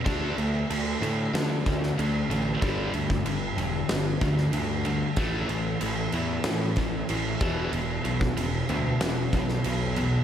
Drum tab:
CC |x-x-x-x-x-x-x-x-|x-x-x-x-x-x-x-x-|x-x-x-x-x-x-x-x-|x-x-x-x-x-x-x-x-|
SD |--------o--o----|--------o--o----|--------o-------|--------o--o----|
BD |o---------o-----|o--o------o-----|o---------o---o-|---o------o-----|